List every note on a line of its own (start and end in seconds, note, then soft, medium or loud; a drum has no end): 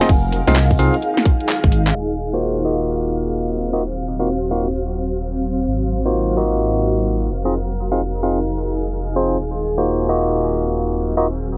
0.00 0.72 C4 medium
0.00 0.09 C4 loud
0.00 3.01 D#4 medium
0.00 0.09 D#4 medium
0.00 0.09 F4 medium
0.00 3.07 G#4 medium
0.00 0.09 G#4 medium
0.00 0.48 A#4 medium
0.00 0.09 D#5 loud
0.00 0.24 F5 medium
0.00 11.58 F5 medium
0.00 snare medium
0.00 closed hi-hat medium
0.09 0.41 F1 loud
0.09 kick loud
0.09 closed hi-hat medium
0.33 open hi-hat loud
0.47 0.76 C2 medium
0.47 0.56 C4 medium
0.47 0.56 D#4 medium
0.47 0.56 F4 medium
0.47 0.56 G#4 medium
0.47 0.79 D#5 medium
0.47 0.56 F5 loud
0.47 snare medium
0.47 closed hi-hat medium
0.56 clap loud
0.56 closed hi-hat medium
0.71 kick medium
0.79 0.90 C2 loud
0.79 0.94 C4 medium
0.79 0.94 D#4 medium
0.79 0.94 F4 medium
0.79 0.94 G#4 medium
0.79 0.94 F5 loud
0.79 open hi-hat loud
0.94 closed hi-hat soft
1.02 closed hi-hat medium
1.17 snare medium
1.25 kick loud
1.25 open hi-hat loud
1.40 closed hi-hat soft
1.49 clap loud
1.49 open hi-hat medium
1.64 1.92 G#1 medium
1.64 kick medium
1.72 open hi-hat loud
1.87 clap medium
1.87 closed hi-hat medium
1.95 5.66 D#1 medium
1.95 8.07 C4 medium
2.33 2.63 A#3 medium
2.33 2.63 D#4 medium
2.33 2.63 F4 medium
2.33 2.63 F#4 medium
2.33 2.63 C5 medium
2.53 7.30 F#3 medium
2.65 3.69 A#3 medium
2.65 3.69 D#4 medium
2.65 3.69 F4 medium
2.65 3.69 F#4 medium
2.65 3.69 D#5 medium
3.73 3.81 A#3 medium
3.73 3.81 D#4 medium
3.73 3.81 F4 medium
3.73 3.81 F#4 medium
3.73 3.81 D#5 loud
4.20 4.28 A#3 medium
4.20 4.28 D#4 medium
4.20 4.28 F4 medium
4.20 4.28 F#4 medium
4.20 4.28 F5 medium
4.51 4.66 A#3 medium
4.51 4.66 D#4 medium
4.51 4.66 F4 medium
4.51 4.66 F#4 medium
4.51 4.66 F5 medium
5.67 7.28 G#1 medium
6.06 6.35 A#3 medium
6.06 6.35 D#4 medium
6.06 6.35 F4 medium
6.06 6.35 F#4 medium
6.06 6.35 C5 medium
6.37 7.29 A#3 medium
6.37 7.29 D#4 medium
6.37 7.29 F4 medium
6.37 7.29 F#4 medium
6.37 8.17 A#4 medium
6.37 7.29 D#5 medium
7.30 9.38 F1 medium
7.30 10.02 D#4 medium
7.45 7.54 C4 medium
7.45 7.54 D#4 medium
7.45 7.54 F4 medium
7.45 7.54 G#4 medium
7.45 10.71 G#4 medium
7.45 7.54 D#5 loud
7.92 8.00 C4 medium
7.92 8.00 D#4 medium
7.92 8.00 F4 medium
7.92 8.00 G#4 medium
7.92 8.00 F5 medium
8.23 8.38 C4 medium
8.23 8.38 D#4 medium
8.23 8.38 F4 medium
8.23 8.38 G#4 medium
8.23 8.38 F5 medium
9.16 9.36 C4 medium
9.16 9.36 D#4 medium
9.16 9.36 F4 medium
9.16 9.36 G#4 medium
9.16 9.36 C5 medium
9.40 11.58 D#1 medium
9.40 11.58 C4 medium
9.78 10.07 A#3 medium
9.78 10.07 D#4 medium
9.78 10.07 F4 medium
9.78 10.07 F#4 medium
9.78 10.07 C5 medium
9.84 11.58 F#3 medium
10.09 11.14 A#3 medium
10.09 11.14 D#4 medium
10.09 11.14 F4 medium
10.09 11.14 F#4 medium
10.09 11.14 D#5 medium
11.17 11.26 A#3 medium
11.17 11.26 D#4 medium
11.17 11.26 F4 medium
11.17 11.26 F#4 medium
11.17 11.26 D#5 loud